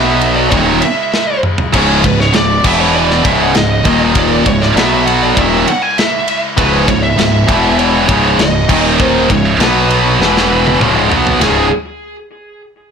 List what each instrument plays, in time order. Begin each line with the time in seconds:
Already playing: picked electric bass B1, distorted electric guitar B2 F#3 B3, pipe organ B2 F#3 F#4 B4, lead electric guitar E5
0.21 ride
0.35 lead electric guitar D5
0.51 picked electric bass D#1, distorted electric guitar D#2 A#2 D#3, pipe organ C#3 G#3 E4 G#4, lead electric guitar C#5, kick, ride
0.81 lead electric guitar E5, ride
1.14 snare
1.43 mid tom
1.58 floor tom
1.73 picked electric bass C#1, distorted electric guitar C#2 G#2 C#3, lead electric guitar C#5, kick, crash, ride
2.04 picked electric bass C#1, distorted electric guitar C#2 G#2, lead electric guitar B4, kick, ride
2.20 lead electric guitar C#5, snare
2.34 picked electric bass C#1, distorted electric guitar C#2 G#2, lead electric guitar D5, snare, ride
2.64 picked electric bass E1, distorted electric guitar E2 B2 E3, pipe organ B2 E3 B4, lead electric guitar E5, kick, crash
2.80 lead electric guitar C#5
2.95 lead electric guitar D5
3.11 snare
3.24 picked electric bass C#1, distorted electric guitar C#2 G#2 C#3, pipe organ C#3 G#3 C#5, lead electric guitar E5, kick, ride
3.42 lead electric guitar F#5
3.55 picked electric bass C#1, distorted electric guitar C#2 G#2, lead electric guitar D#5, snare, ride
3.85 picked electric bass D#1, distorted electric guitar D#2 A#2 D#3, pipe organ A#2 A#3 D#4 A#4, kick, ride
4.15 lead electric guitar D5, kick, ride
4.45 picked electric bass C#1, distorted electric guitar C#2 G#2, pipe organ C#3 G#3 E4 C#5, lead electric guitar C#5, kick, ride
4.62 lead electric guitar D5, snare
4.75 picked electric bass B1, distorted electric guitar B2 F#3 B3, pipe organ B2 F#3 F#4 B4, lead electric guitar E5, snare, ride
5.06 lead electric guitar F#5, ride
5.23 lead electric guitar D5
5.35 picked electric bass D#1, distorted electric guitar D#2 A#2 D#3, pipe organ C#3 G#3 E4 C#5, lead electric guitar E5, kick, ride
5.67 lead electric guitar F#5, ride
5.82 lead electric guitar G#5
5.98 lead electric guitar E5, snare, ride
6.28 ride
6.57 picked electric bass C#1, distorted electric guitar C#2 G#2 C#3, lead electric guitar B4, kick, ride
6.87 picked electric bass C#1, distorted electric guitar C#2 G#2, lead electric guitar C#5, kick, ride
7.03 lead electric guitar E5
7.16 picked electric bass C#1, distorted electric guitar C#2 G#2, snare, ride
7.47 picked electric bass E1, distorted electric guitar E2 B2 E3, pipe organ B2 E3 E4 B4, kick, ride
7.79 lead electric guitar C#5, ride
8.07 picked electric bass C#1, distorted electric guitar C#2 G#2 C#3, pipe organ C#3 G#3 C#5, kick, ride
8.38 picked electric bass C#1, distorted electric guitar C#2 G#2, lead electric guitar D#5, snare, ride
8.67 picked electric bass D#1, distorted electric guitar D#2 A#2 D#3, pipe organ A#2 A#3 D#4 D#5, kick, crash
9.00 lead electric guitar C5, kick
9.29 picked electric bass C#1, distorted electric guitar C#2 G#2, pipe organ C#3 G#3 E4 C#5, lead electric guitar C#5, kick, ride
9.59 picked electric bass B1, distorted electric guitar B2 F#3 B3, pipe organ B2 F#3 F#4 B4, lead electric guitar B4, snare, ride
9.90 ride
10.19 picked electric bass E1, distorted electric guitar E2 B2 E3, pipe organ E3 E4, snare
10.37 snare
10.67 high tom
10.80 picked electric bass C#1, distorted electric guitar C#2 G#2 C#3, pipe organ C#3 G#3 C#5, mid tom
11.10 picked electric bass B1, distorted electric guitar B2 F#3 B3, floor tom
11.27 floor tom
11.40 picked electric bass C#1, distorted electric guitar C#2 G#2 C#3, pipe organ C#3 G#3 E4 C#5, lead electric guitar G#4, snare, floor tom, ride bell